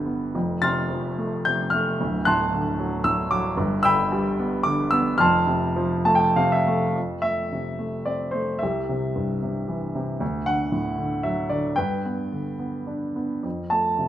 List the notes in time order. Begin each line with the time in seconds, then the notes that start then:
Already playing: G1 G2 D3 G3 B3 B5 D6 G6
0.06 B3
0.35 F1 F2
0.62 C3 C6 F6 A6
0.90 F3
1.18 A3
1.45 C3 G6
1.70 A3 F6
2.00 D1 D2
2.25 A2 A5 C6 F#6
2.53 D3
2.79 F#3
3.04 A2 E6
3.31 F#3 D6
3.57 G1 G2
3.83 D3 G5 B5 E6
4.12 G3
4.39 B3
4.63 D3 D6
4.91 B3 E6
5.18 F1 F2 A5 C6 F6
5.47 C3
5.76 F3
6.05 A3 A5
6.15 G5
6.36 C3 F5
6.52 E5
6.67 A3
6.96 F2
7.22 A3 E5
7.52 C3
7.79 A3
8.05 C4 D5
8.31 A3 C5
8.59 G4 E5
8.63 C2
8.89 C3
9.16 G2
9.42 C3
9.68 E3
9.95 C3
10.20 D2
10.46 D3 F#5
10.72 A2
10.98 D3
11.23 F#3 E5
11.49 D3 D5
11.76 G2 B4 G5
12.05 B3
12.32 D3
12.59 B3
12.87 D4
13.16 B3
13.43 F2
13.70 A3 A5
13.99 C3